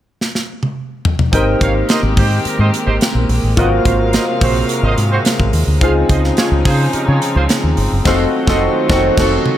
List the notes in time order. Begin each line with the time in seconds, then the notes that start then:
0.21 snare
0.35 snare
0.63 high tom
1.05 floor tom
1.19 floor tom
1.32 G#1 D#3 G#3 A#3 C4 D#4 G4 A#4 C5 D#5 G5, kick, closed hi-hat
1.61 G#1 A#4 C#5 F5, kick, closed hi-hat
1.89 A#4 C5 D#5, snare, closed hi-hat
2.03 G#1
2.17 G#2 D#4 G4 C5, kick, open hi-hat
2.45 D#4 G4 A#4, muted fingered electric bass stroke, closed hi-hat
2.59 G#2 A#4 C5 D#5
2.74 closed hi-hat
2.87 G#1 D#4 G4 C5
3.01 snare, closed hi-hat
3.15 A#1
3.29 A#1, open hi-hat
3.43 A1
3.56 G#1 C3 F#3 B3 F4 F#4 A#4 C5 D#5 F5 F#5, kick, closed hi-hat
3.63 C4
3.85 G#1 A#4 C5 F5, kick, closed hi-hat
4.13 A#4 C5 D#5, snare, closed hi-hat
4.41 A#1 C4 F#4 C5, kick, open hi-hat
4.69 A#3 F#4 A#4, closed hi-hat
4.83 G#1 A#4 C5 D#5
4.97 G#2, closed hi-hat
5.12 C4 F#4 C5
5.25 snare, closed hi-hat
5.40 G#1, kick
5.53 D#2, open hi-hat
5.67 D2
5.81 C#2 C#3 F3 C4 D#4 F4 G#4 C5 F5, kick, closed hi-hat
6.09 C#2 G#4 C5 D#5, kick, closed hi-hat
6.24 snare
6.37 F4 G#4 C#5, snare, closed hi-hat
6.51 C#2
6.65 C#3 F4 G#4 C5, kick, snare, open hi-hat
6.93 D#4 G4 A#4, muted fingered electric bass stroke, closed hi-hat
7.07 C#3 F4 G#4 C#5
7.22 closed hi-hat
7.35 C#2 F4 G#4 C5
7.49 snare, closed hi-hat
7.64 D#2
7.77 G1, open hi-hat
7.92 F#1
8.05 F1 D#3 F#3 A3 C4 D#4 F4 F#4 A4 C5 F5, kick, snare, crash
8.47 F1 C4 D#4 F#4 A4 C5 D#5, kick, snare
8.88 F1 C4 D#4 F#4 A4, kick, snare
9.17 F1 C4 D#4 F#4 A4, kick, snare, crash
9.46 high tom